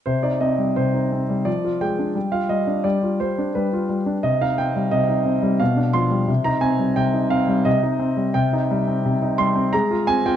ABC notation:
X:1
M:3/4
L:1/16
Q:1/4=87
K:Cm
V:1 name="Grand piano"
c d e2 c4 d2 g2- | g f e2 d2 c2 =B4 | e f g2 e4 f2 c'2- | c' b a2 g2 f2 e4 |
g6 c'2 b2 a g |]
V:2 name="Grand piano"
C, E C G, C, E C G, F, F A, D | G, F G, D G, F G, D G, F G, D | C, E C G, C, E C G, =B,, D F, G, | C, E C G, C, E C G, C, E C G, |
C, E G, C C, E G, C A, F C F |]